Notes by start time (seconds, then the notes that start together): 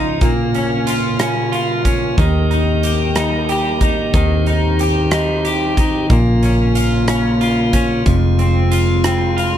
Already playing: C#2 C#3 F3 D#4 F4
0.21 A#1 A#2 A#3 F4, kick, closed hi-hat
0.54 C#4, closed hi-hat
0.87 F4, closed hi-hat
1.19 C#4, cross-stick, closed hi-hat
1.52 F4, closed hi-hat
1.85 C#4, kick, closed hi-hat
2.18 D#2 D#3 A#3 G4, kick, closed hi-hat
2.51 D#4, closed hi-hat
2.83 G4, closed hi-hat
3.15 D#4, cross-stick, closed hi-hat
3.49 G4, closed hi-hat
3.81 D#4, kick, closed hi-hat
4.14 D#2 D#3 C4, kick, closed hi-hat
4.46 D#4, closed hi-hat
4.79 G4, closed hi-hat
5.11 D#4, cross-stick, closed hi-hat
5.45 G4, closed hi-hat
5.77 D#4, kick, closed hi-hat
6.10 A#1 A#2 C#3 A#3 F4, kick, closed hi-hat
6.43 C#4, closed hi-hat
6.75 F4, closed hi-hat
7.08 C#4, cross-stick, closed hi-hat
7.41 F4, closed hi-hat
7.73 C#4, kick, closed hi-hat
8.06 F1 F2 C3 G#3 F4, kick, closed hi-hat
8.39 C4, closed hi-hat
8.72 F4, closed hi-hat
9.04 C4, cross-stick, closed hi-hat
9.37 F4, closed hi-hat